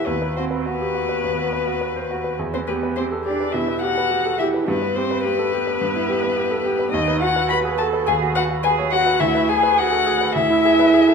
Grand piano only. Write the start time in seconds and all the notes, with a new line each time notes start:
Already playing: G4 A4 B4
0.07 D#2
0.22 B4
0.37 F#4
0.51 B4
0.66 F#4
0.81 G4
0.95 F#4
1.09 B4
1.23 D#2
1.38 F#4
1.53 B4
1.67 F#4
1.81 B4
1.96 C5
2.11 F#4
2.24 B4
2.39 E2
2.54 B4
2.69 G4
2.83 B4
2.97 G4
3.12 A4
3.26 G4
3.40 B4
3.54 B2
3.68 B4
3.82 G4
3.98 B4
4.11 G4
4.25 A4
4.40 G4
4.54 B4
4.68 G2
4.82 B4
4.97 G4
5.11 B4
5.25 G4
5.39 A4
5.53 G4
5.67 B4
5.81 G2
5.95 E4
6.09 G4
6.23 B4
6.37 G4
6.51 A4
6.65 G4
6.79 B4
6.93 D#2
7.08 B4
7.22 F#4
7.36 B4
7.51 F#4
7.65 G#4
7.79 F#4
7.93 B4
8.08 D#2
8.22 F#4
8.36 B4
8.50 F#4
8.64 B4
8.78 C#5
8.92 F#4
9.06 B4
9.21 D2
9.35 B4
9.49 G#4
9.63 B4
9.78 G#4
9.92 A4
10.06 G#4
10.21 B4
10.36 D2
10.50 E4
10.65 G#4
10.79 B4
10.94 G#4
11.08 A4